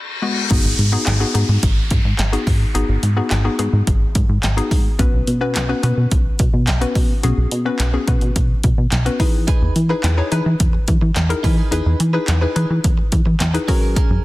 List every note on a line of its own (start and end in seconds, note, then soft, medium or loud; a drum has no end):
0.00 reverse cymbal medium
0.22 0.45 G#3 medium
0.22 0.45 B3 medium
0.22 0.45 F#4 loud
0.50 0.60 G#1 loud
0.50 0.81 B3 loud
0.50 0.81 D#4 medium
0.50 0.81 F#4 medium
0.50 0.81 G#4 loud
0.50 kick loud
0.50 closed hi-hat medium
0.50 crash loud
0.50 downlifter medium
0.65 0.74 G#1 loud
0.79 0.97 G#2 loud
0.79 closed hi-hat medium
0.92 1.13 B3 medium
0.92 1.13 D#4 medium
0.92 1.13 F#4 medium
0.92 1.13 G#4 loud
1.06 1.25 G#1 loud
1.06 snare medium
1.06 clap loud
1.06 closed hi-hat loud
1.20 1.31 B3 medium
1.20 1.31 D#4 medium
1.20 1.31 F#4 medium
1.20 1.31 G#4 loud
1.34 1.44 G#2 loud
1.34 2.06 B3 medium
1.34 2.06 D#4 medium
1.34 2.06 F#4 medium
1.34 2.07 G#4 loud
1.34 closed hi-hat medium
1.49 1.58 G#2 loud
1.63 1.81 G#1 loud
1.63 kick loud
1.63 closed hi-hat loud
1.91 2.00 G#2 loud
1.91 kick loud
1.91 closed hi-hat loud
2.05 2.14 G#2 loud
2.19 2.37 G#1 loud
2.19 snare medium
2.19 clap loud
2.19 closed hi-hat medium
2.32 2.63 B3 medium
2.32 2.64 D#4 medium
2.32 2.64 F#4 medium
2.32 2.64 G#4 loud
2.32 closed hi-hat medium
2.47 2.65 G#2 loud
2.47 kick loud
2.47 open hi-hat medium
2.75 2.84 G#1 loud
2.75 3.06 B3 loud
2.75 3.06 D#4 medium
2.75 3.06 F#4 medium
2.75 3.06 G#4 loud
2.75 closed hi-hat medium
2.89 2.98 G#1 loud
3.03 3.21 G#2 loud
3.03 closed hi-hat medium
3.17 3.37 B3 loud
3.17 3.37 D#4 medium
3.17 3.37 F#4 medium
3.17 3.38 G#4 loud
3.31 3.49 G#1 loud
3.31 snare medium
3.31 clap loud
3.31 closed hi-hat loud
3.45 3.55 B3 medium
3.45 3.55 D#4 medium
3.45 3.55 F#4 medium
3.45 3.55 G#4 loud
3.59 3.68 G#2 loud
3.59 4.31 B3 medium
3.59 4.31 D#4 medium
3.59 4.31 F#4 medium
3.59 4.31 G#4 loud
3.59 closed hi-hat medium
3.73 3.82 G#2 loud
3.87 4.05 G#1 loud
3.87 kick loud
3.87 closed hi-hat loud
4.15 4.24 G#2 medium
4.15 kick loud
4.15 closed hi-hat medium
4.29 4.38 G#2 loud
4.43 4.62 G#1 loud
4.43 snare medium
4.43 clap loud
4.43 closed hi-hat medium
4.57 4.88 B3 medium
4.57 4.88 D#4 medium
4.57 4.88 F#4 medium
4.57 4.88 G#4 loud
4.57 closed hi-hat medium
4.71 4.89 G#2 medium
4.71 kick medium
4.71 open hi-hat medium
4.99 5.08 B1 loud
4.99 5.30 B3 loud
4.99 5.30 C#4 medium
4.99 5.30 F#4 medium
4.99 5.30 B4 loud
4.99 kick loud
4.99 closed hi-hat medium
5.13 5.22 B1 loud
5.27 5.57 B2 loud
5.27 closed hi-hat medium
5.41 5.62 B3 medium
5.41 5.62 C#4 medium
5.41 5.62 F#4 medium
5.41 5.62 B4 loud
5.55 5.74 B1 loud
5.55 snare medium
5.55 clap loud
5.55 closed hi-hat loud
5.69 5.79 B3 medium
5.69 5.79 C#4 medium
5.69 5.79 F#4 medium
5.69 5.80 B4 loud
5.83 5.93 B2 loud
5.83 6.55 B3 medium
5.83 6.55 C#4 medium
5.83 6.55 F#4 medium
5.83 6.55 B4 loud
5.83 closed hi-hat medium
5.97 6.07 B2 loud
6.11 6.30 B1 loud
6.11 kick loud
6.11 closed hi-hat loud
6.39 6.49 B2 loud
6.39 kick loud
6.39 closed hi-hat loud
6.53 6.69 B2 loud
6.67 6.86 B1 loud
6.67 snare loud
6.67 clap loud
6.67 closed hi-hat medium
6.81 7.12 B3 loud
6.81 7.12 C#4 medium
6.81 7.12 F#4 medium
6.81 7.12 B4 loud
6.81 closed hi-hat medium
6.95 7.14 B2 loud
6.95 kick medium
6.95 open hi-hat medium
7.23 7.33 B1 loud
7.23 7.54 B3 loud
7.23 7.54 C#4 medium
7.23 7.54 F#4 medium
7.23 7.54 G#4 loud
7.23 closed hi-hat medium
7.38 7.47 B1 loud
7.51 7.70 B2 loud
7.51 closed hi-hat medium
7.65 7.86 B3 medium
7.65 7.86 C#4 medium
7.65 7.86 F#4 medium
7.65 7.86 B4 loud
7.79 7.98 B1 loud
7.79 snare medium
7.79 clap loud
7.79 closed hi-hat loud
7.93 8.04 B3 medium
7.93 8.04 C#4 medium
7.93 8.04 F#4 medium
7.93 8.04 G#4 loud
8.07 8.17 B2 loud
8.07 8.79 B3 loud
8.07 8.79 C#4 medium
8.07 8.80 F#4 medium
8.07 8.80 B4 loud
8.07 kick loud
8.07 closed hi-hat medium
8.21 8.31 B2 loud
8.21 closed hi-hat medium
8.36 8.54 B1 loud
8.36 kick loud
8.36 closed hi-hat loud
8.63 8.73 B2 loud
8.63 kick loud
8.63 closed hi-hat loud
8.78 8.87 B2 loud
8.92 9.10 B1 loud
8.92 snare medium
8.92 clap loud
8.92 closed hi-hat medium
9.05 9.20 B3 medium
9.05 9.20 C#4 medium
9.05 9.20 F#4 medium
9.05 9.19 B4 loud
9.05 closed hi-hat medium
9.19 9.47 E3 loud
9.19 9.76 D#4 loud
9.19 9.76 E4 medium
9.19 9.76 G#4 medium
9.19 9.76 B4 loud
9.19 kick loud
9.19 open hi-hat medium
9.47 9.73 D#4 medium
9.47 9.74 G#4 medium
9.47 9.74 B4 loud
9.47 kick loud
9.47 closed hi-hat medium
9.62 9.71 E2 loud
9.76 9.94 E3 loud
9.76 closed hi-hat medium
9.89 10.10 D#4 loud
9.89 10.02 D#4 medium
9.89 10.10 E4 medium
9.89 10.10 G#4 medium
9.89 10.03 G#4 medium
9.89 10.02 B4 medium
9.89 10.11 B4 loud
10.04 10.22 E2 loud
10.04 muted clean electric guitar stroke soft
10.04 snare medium
10.04 clap loud
10.04 closed hi-hat loud
10.17 10.28 D#4 medium
10.17 10.30 D#4 medium
10.17 10.28 E4 medium
10.17 10.28 G#4 medium
10.17 10.31 G#4 medium
10.17 10.30 B4 medium
10.17 10.28 C#5 loud
10.31 10.41 E3 loud
10.31 10.48 D#4 medium
10.31 11.04 D#4 medium
10.31 11.04 E4 medium
10.31 11.04 G#4 medium
10.31 10.45 G#4 medium
10.31 11.04 B4 loud
10.31 10.44 B4 loud
10.31 closed hi-hat medium
10.45 10.55 E3 loud
10.45 muted clean electric guitar stroke soft
10.59 10.78 E2 loud
10.59 muted clean electric guitar stroke soft
10.59 kick loud
10.59 closed hi-hat loud
10.73 muted clean electric guitar stroke medium
10.88 10.97 E3 loud
10.88 kick loud
10.88 closed hi-hat loud
11.01 11.11 E3 medium
11.01 muted clean electric guitar stroke soft
11.15 11.34 E2 loud
11.15 muted clean electric guitar stroke medium
11.15 snare medium
11.15 clap loud
11.15 closed hi-hat medium
11.29 11.61 D#4 loud
11.29 11.61 E4 medium
11.29 11.61 G#4 medium
11.29 11.61 A#4 loud
11.29 muted clean electric guitar stroke medium
11.29 closed hi-hat medium
11.43 11.62 E3 medium
11.43 11.58 D#4 medium
11.43 11.57 G#4 medium
11.43 11.56 B4 loud
11.43 kick loud
11.43 open hi-hat medium
11.57 11.70 D#4 medium
11.57 11.71 G#4 medium
11.57 11.70 B4 medium
11.71 11.81 E2 loud
11.71 11.97 D#4 medium
11.71 12.02 D#4 medium
11.71 12.03 E4 medium
11.71 12.03 G#4 medium
11.71 11.98 G#4 medium
11.71 12.03 B4 loud
11.71 11.98 B4 medium
11.71 closed hi-hat medium
11.86 11.95 E2 loud
11.99 12.18 E3 loud
11.99 muted clean electric guitar stroke soft
11.99 closed hi-hat medium
12.13 12.34 D#4 medium
12.13 12.26 D#4 medium
12.13 12.35 E4 medium
12.13 12.35 G#4 medium
12.13 12.27 G#4 medium
12.13 12.26 B4 medium
12.13 12.35 B4 loud
12.28 12.46 E2 loud
12.28 muted clean electric guitar stroke soft
12.28 snare medium
12.28 clap loud
12.28 closed hi-hat loud
12.41 12.52 D#4 medium
12.41 12.54 D#4 medium
12.41 12.52 E4 medium
12.41 12.52 G#4 medium
12.41 12.55 G#4 medium
12.41 12.54 B4 medium
12.41 12.52 B4 loud
12.55 12.65 E3 loud
12.55 12.72 D#4 medium
12.55 13.28 D#4 medium
12.55 13.28 E4 medium
12.55 13.28 G#4 medium
12.55 12.70 G#4 medium
12.55 13.28 B4 loud
12.55 12.68 B4 medium
12.55 closed hi-hat medium
12.70 12.79 E3 loud
12.70 muted clean electric guitar stroke soft
12.84 13.03 E2 loud
12.84 muted clean electric guitar stroke soft
12.84 kick loud
12.84 closed hi-hat loud
12.98 muted clean electric guitar stroke soft
13.12 13.21 E3 loud
13.12 kick loud
13.12 closed hi-hat medium
13.26 13.35 E3 medium
13.26 muted clean electric guitar stroke medium
13.40 13.58 E2 loud
13.40 muted clean electric guitar stroke medium
13.40 snare medium
13.40 clap loud
13.40 closed hi-hat loud
13.54 13.68 D#4 loud
13.54 13.68 E4 medium
13.54 13.67 G#4 medium
13.54 13.68 B4 loud
13.54 muted clean electric guitar stroke medium
13.54 closed hi-hat medium
13.68 13.96 F#3 loud
13.68 13.82 C#4 medium
13.68 14.24 C#4 loud
13.68 14.24 F#4 loud
13.68 14.24 G#4 medium
13.68 13.81 G#4 medium
13.68 14.25 A#4 loud
13.68 13.80 A#4 medium
13.68 kick medium
13.68 open hi-hat medium
13.82 13.94 C#4 medium
13.82 13.95 G#4 medium
13.82 13.95 A#4 medium
13.95 14.22 C#4 medium
13.95 14.22 G#4 medium
13.95 14.23 A#4 medium
13.95 kick loud
13.95 closed hi-hat medium
14.10 14.20 F#2 loud